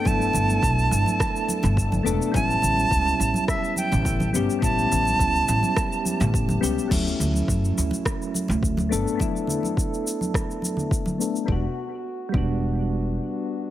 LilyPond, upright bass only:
\new Staff \with { instrumentName = "Upright bass" } { \clef bass \time 4/4 \key e \dorian \tempo 4 = 105 g,,8 g,,8 b,,8 g,,16 r4 g,,8. e,,16 r16 | a,,8 a,,8 cis,8 a,,16 r4 a,,8. g,,16 r16 | a,,8 a,,8 cis,8 a,,16 r4 a,,8. cis,16 r16 | d,8 d,8 fis,8 d,16 r4 d,8. g,,16 r16 |
r1 | e,,16 r4 r16 e,,4. r4 | }